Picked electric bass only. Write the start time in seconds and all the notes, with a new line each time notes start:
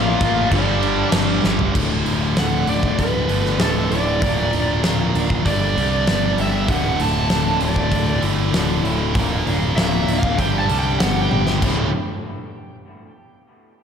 Already playing: A1
0.21 A1
0.52 G1
1.13 G1
1.44 G1
1.75 D1
2.06 D1
2.37 D1
2.68 D1
2.99 D1
3.29 G1
3.60 D1
3.90 D1
4.22 D1
4.53 D1
4.84 D1
5.15 D1
5.46 G1
5.77 C2
6.08 G1
6.38 G1
6.68 D1
6.99 D1
7.31 D1
7.61 D1
7.92 D1
8.22 G1
8.52 D1
8.83 D1
9.15 D1
9.44 D1
9.75 D1
10.06 D1
10.39 G1
10.69 C2
11.00 G1
11.30 G1
11.62 D1